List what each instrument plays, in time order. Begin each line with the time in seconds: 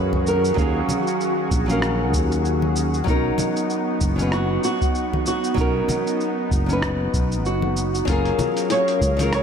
Already playing: fretless electric bass F#2, analog synth pad D#3 F#3 C#4 F#4 G#4, nylon-string guitar F#3 C#4 G#4 B4 F5, synth texture F#4 F#5
0.13 kick, high conga
0.27 nylon-string guitar A#4, shaker
0.45 shaker
0.54 fretless electric bass D#2, nylon-string guitar F#3 C#4, kick, shaker
0.58 nylon-string guitar G#4 F5
0.89 high conga, low conga, shaker
1.07 shaker
1.21 shaker
1.51 fretless electric bass A#1, kick, shaker
1.66 nylon-string guitar F#3 C#4, high conga, shaker
1.70 nylon-string guitar A#4 F5
1.82 cross-stick, shaker
2.14 fretless electric bass D#2, kick, shaker
2.32 shaker
2.45 shaker
2.62 high conga
2.76 shaker
2.94 shaker
3.04 fretless electric bass B1, nylon-string guitar F#3 C#4, analog synth pad B3 D#4, kick, shaker
3.08 nylon-string guitar D#4 A#4
3.38 high conga, low conga, shaker
3.57 shaker
3.70 shaker
4.01 fretless electric bass F#1, kick, shaker
4.16 nylon-string guitar F#3 C#4, high conga, shaker
4.20 nylon-string guitar D#4 B4
4.32 nylon-string guitar F#4, cross-stick, shaker
4.64 nylon-string guitar F#4, shaker
4.82 kick, shaker
4.95 shaker
5.13 kick, high conga
5.26 nylon-string guitar F#4, shaker
5.44 shaker
5.54 fretless electric bass B1, nylon-string guitar F#3 C#4, kick, shaker
5.59 nylon-string guitar D#4 A#4
5.89 high conga, low conga, shaker
6.07 shaker
6.21 shaker
6.51 fretless electric bass F#1, kick, shaker
6.66 nylon-string guitar F#3 C#4, high conga, shaker
6.70 nylon-string guitar D#4 B4
6.82 kick, cross-stick, shaker
7.14 fretless electric bass B1, kick, shaker
7.32 shaker
7.45 fretless electric bass F#1, nylon-string guitar F#4, shaker
7.62 high conga
7.77 shaker
7.95 shaker
8.05 fretless electric bass F#1, nylon-string guitar F#3 C#4 F4, analog synth pad F#3 C#4 G#4 A#4 F5, kick, closed hi-hat, shaker
8.10 nylon-string guitar G#4 A#4
8.25 closed hi-hat
8.39 high bongo, high conga, low conga, shaker
8.57 closed hi-hat, shaker
8.70 nylon-string guitar C#5, closed hi-hat, high bongo, shaker
8.88 closed hi-hat
9.01 fretless electric bass C#2, kick, shaker
9.17 nylon-string guitar F#3 C#4, closed hi-hat, high bongo, high conga, shaker
9.21 nylon-string guitar F4 A#4
9.33 nylon-string guitar C#5, cross-stick, closed hi-hat, shaker